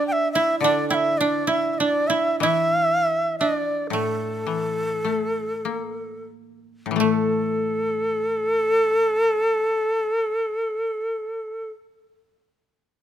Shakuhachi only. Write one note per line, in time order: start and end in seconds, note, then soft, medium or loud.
0.07 0.13 G5 medium
0.12 0.32 E5 medium
0.32 0.59 E5 medium
0.59 0.88 D5 medium
0.89 0.95 G5 medium
0.94 1.19 E5 medium
1.18 1.50 D5 medium
1.48 1.73 E5 medium
1.73 1.80 E5 medium
1.78 2.09 D5 medium
2.07 2.40 E5 medium
2.40 3.36 E5 loud
3.39 3.57 D#5 medium
3.57 3.88 D5 medium
3.90 6.26 A4 medium
7.00 11.69 A4 medium